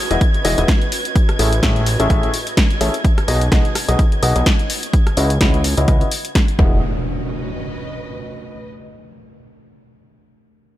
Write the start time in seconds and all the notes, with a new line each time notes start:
Already playing: C#4 F#4 B4 G#6
0.01 D#5
0.11 E1 E3 B3 E4 F#4 G#4 D#5, closed hi-hat
0.21 kick, closed hi-hat
0.34 closed hi-hat
0.45 E1 E3 B3 E4 F#4 G#4 D#5, open hi-hat
0.58 E1 E3 B3 E4 F#4 G#4 D#5, closed hi-hat
0.68 kick, snare, closed hi-hat
0.82 closed hi-hat
0.92 open hi-hat
1.05 closed hi-hat
1.16 kick, closed hi-hat
1.29 cross-stick, closed hi-hat
1.39 A1 A2 C#4 E4 G#4 A4 E5, open hi-hat
1.53 closed hi-hat
1.63 A1 A2 C#4 E4 G#4 A4 E5, kick, snare, closed hi-hat
1.76 closed hi-hat
1.86 open hi-hat
2.00 A1 A2 C#4 E4 G#4 A4 E5, closed hi-hat
2.10 A1 A2 C#4 E4 G#4 A4 E5, kick, closed hi-hat
2.23 closed hi-hat
2.34 open hi-hat
2.47 closed hi-hat
2.57 kick, snare, closed hi-hat
2.71 closed hi-hat
2.81 A1 C#4 E4 G#4 A4 E5, open hi-hat
2.94 closed hi-hat
3.05 C#4, kick, closed hi-hat
3.18 cross-stick, closed hi-hat
3.28 B1 B2 B3 D#4 F#4 G#4 D#5, open hi-hat
3.41 closed hi-hat
3.52 B1 B2 B3 D#4 F#4 G#4 D#5, kick, snare, closed hi-hat
3.65 closed hi-hat
3.75 cross-stick, open hi-hat
3.88 B1 B2 B3 D#4 F#4 G#4 D#5, closed hi-hat
3.99 kick, closed hi-hat
4.12 closed hi-hat
4.22 B1 B2 B3 D#4 F#4 G#4 D#5, open hi-hat
4.36 B1 B2 B3 D#4 F#4 G#4 D#5, closed hi-hat
4.46 kick, snare, closed hi-hat
4.59 closed hi-hat
4.70 open hi-hat
4.83 closed hi-hat
4.93 kick, closed hi-hat
5.07 cross-stick, closed hi-hat
5.17 C#2 C#3 C#4 E4 F#4 B4 D#5, open hi-hat
5.30 closed hi-hat
5.41 C#2 C#3 C#4 E4 F#4 B4 D#5, kick, snare, closed hi-hat
5.54 closed hi-hat
5.64 open hi-hat
5.77 C#2 C#3 C#4 E4 F#4 B4 D#5, closed hi-hat
5.88 C#2 C#3 C#4 E4 F#4 B4 D#5, kick, closed hi-hat
6.01 closed hi-hat
6.11 open hi-hat
6.25 closed hi-hat
6.35 kick, snare, closed hi-hat
6.48 closed hi-hat
6.59 E1 B3 C#4 E4 F#4 G#4 D#5, kick, impact
6.67 F#4
6.98 B4
7.04 D#5